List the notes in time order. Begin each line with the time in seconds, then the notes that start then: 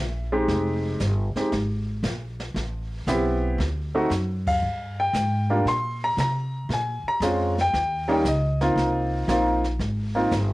Already playing: A#1 E5
0.32 G#3 C4 D#4 G4
0.48 F1, brush sweep, snare
1.00 G1, snare, hi-hat pedal
1.35 G#3 C4 D#4 G4, muted upright bass stroke, snare
1.52 G#1, brush sweep, snare
2.03 A#1, snare, hi-hat pedal
2.40 snare
2.54 A1, brush sweep, snare
3.07 B1 B3 C4 E4 G4, snare, hi-hat pedal
3.58 D2, brush sweep, snare
3.95 A3 C4 D#4 F#4
4.10 F#2, snare, hi-hat pedal
4.47 F5, kick, crash
4.62 G2, brush sweep
5.00 G5
5.13 G#2, snare, hi-hat pedal
5.50 G3 A#3 D4 F4
5.65 A#2 C6, brush sweep, snare
6.04 A#5
6.17 C3 A#5, snare, hi-hat pedal
6.69 A#2, brush sweep, snare
6.73 G#5
7.03 muted upright bass stroke
7.08 A#5
7.20 F2 G#3 C4 C#4 F4, snare, hi-hat pedal
7.58 G5, snare
7.73 D#2, brush sweep, snare
8.08 G3 A#3 C#4 D#4
8.12 G5
8.25 C#2 D#5, snare, hi-hat pedal
8.61 A#3 C4 D#4 F4, snare
8.76 C2, brush sweep, snare
9.28 A#1 A#3 C4 D#4 F4, snare, hi-hat pedal
9.64 snare
9.79 G#1, brush sweep, snare
10.15 A#3 C4 D#4 F4
10.31 G1, snare, hi-hat pedal